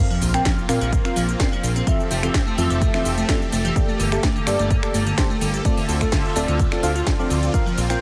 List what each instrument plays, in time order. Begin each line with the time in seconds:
0.00 supersaw synth A#3 C4 F4, synth stab C4 F4 A#4 F5, sub drop
0.11 synth arpeggio sound F3, shaker
0.22 analog synth bass A#1, open hi-hat, shaker
0.34 synth arpeggio sound C4, synth stab C4 F4 A#4 G5, finger snap, closed hi-hat, shaker
0.45 synth arpeggio sound F3, kick, snare, closed hi-hat, shaker
0.58 shaker
0.69 analog synth bass A#2, synth arpeggio sound C4, synth stab C4 F4 A#4 F5, finger snap, open hi-hat, shaker
0.81 analog synth bass A#1, synth arpeggio sound F3, closed hi-hat, shaker
0.93 kick, closed hi-hat, shaker
1.05 synth stab C4 F4 A#4 F5, synth arpeggio sound C4, finger snap, shaker
1.16 analog synth bass A#1, synth arpeggio sound F3, open hi-hat, shaker
1.29 closed hi-hat, shaker
1.40 synth arpeggio sound C4, synth stab C4 F4 A#4 D5, kick, snare, closed hi-hat, shaker
1.52 synth arpeggio sound F3, shaker
1.63 analog synth bass A#1, open hi-hat, shaker
1.76 synth arpeggio sound C4, closed hi-hat, shaker
1.87 synth arpeggio sound E3, supersaw synth F3 G4 A4 E5, synth stab C4 F4 A4 E5, kick, closed hi-hat, shaker
2.00 shaker
2.11 analog synth bass F1, synth arpeggio sound A3, open hi-hat, shaker
2.23 synth arpeggio sound E3, synth stab C4 F4 A4 F5, finger snap, closed hi-hat, shaker
2.34 kick, snare, closed hi-hat, shaker
2.47 synth arpeggio sound A3, shaker
2.58 analog synth bass F2, synth arpeggio sound E3, synth stab C4 F4 A4 E5, open hi-hat, shaker
2.70 analog synth bass F1, closed hi-hat, shaker
2.81 synth arpeggio sound A3, kick, closed hi-hat, shaker
2.94 synth arpeggio sound E3, synth stab C4 F4 A4 E5, finger snap, snare, shaker
3.05 analog synth bass F1, open hi-hat, shaker
3.18 synth arpeggio sound A3, closed hi-hat, shaker
3.29 synth arpeggio sound E3, synth stab C4 F4 A4 D5, kick, snare, closed hi-hat, shaker
3.42 shaker
3.52 analog synth bass F1, synth arpeggio sound A3, open hi-hat, shaker
3.65 synth arpeggio sound E3, closed hi-hat, shaker
3.76 supersaw synth A#3 A4, synth stab A#3 G4 A4 D5, kick, closed hi-hat, shaker
3.89 synth arpeggio sound A3, shaker
4.00 analog synth bass G1, synth arpeggio sound D3, open hi-hat, shaker
4.12 synth stab A#3 G4 A4 E5, finger snap, closed hi-hat, shaker
4.23 synth arpeggio sound A3, kick, snare, closed hi-hat, shaker
4.36 synth arpeggio sound D3, shaker
4.47 analog synth bass G2, synth stab A#3 G4 A4 D5, finger snap, open hi-hat, shaker
4.59 analog synth bass G1, synth arpeggio sound A3, closed hi-hat, shaker
4.70 synth arpeggio sound D3, kick, closed hi-hat, shaker
4.83 synth stab A#3 G4 A4 D5, finger snap, shaker
4.94 analog synth bass G1, synth arpeggio sound A3, open hi-hat, shaker
5.07 synth arpeggio sound D3, closed hi-hat, shaker
5.18 synth stab A#3 G4 A4 C5, kick, snare, closed hi-hat, shaker
5.30 synth arpeggio sound A3, shaker
5.41 analog synth bass G1, synth arpeggio sound D3, open hi-hat, shaker
5.54 closed hi-hat, shaker
5.65 supersaw synth D3 C4 F4 E5, synth arpeggio sound A3, synth stab C4 F4 A4 D5, kick, closed hi-hat, shaker
5.77 synth arpeggio sound D3, open hi-hat, shaker
5.89 analog synth bass D2, open hi-hat, shaker
6.01 synth arpeggio sound A3, synth stab C4 F4 A4 E5, finger snap, kick, closed hi-hat, shaker
6.12 synth arpeggio sound D3, kick, snare, closed hi-hat, shaker
6.25 shaker
6.36 analog synth bass D1, synth arpeggio sound A3, synth stab C4 F4 A4 D5, open hi-hat, shaker
6.48 analog synth bass D2, synth arpeggio sound D3, closed hi-hat, shaker
6.59 kick, closed hi-hat, shaker
6.72 synth arpeggio sound A3, synth stab C4 F4 A4 D5, finger snap, snare, shaker
6.83 analog synth bass D2, synth stab C4 F4 A4 F5, synth arpeggio sound D4, open hi-hat, shaker
6.96 synth arpeggio sound F4, closed hi-hat, shaker
7.07 kick, snare, closed hi-hat, shaker
7.19 synth arpeggio sound F3, synth stab C4 F4 A4 D5, shaker
7.30 analog synth bass D2, synth arpeggio sound D3, open hi-hat, shaker
7.43 closed hi-hat, shaker
7.54 supersaw synth A#3, synth arpeggio sound C4, synth stab C4 F4 A#4 F5, kick, closed hi-hat, shaker
7.66 synth arpeggio sound F3, shaker
7.78 analog synth bass A#1, open hi-hat, shaker
7.90 synth stab C4 F4 A#4 G5, synth arpeggio sound C4, finger snap, closed hi-hat, shaker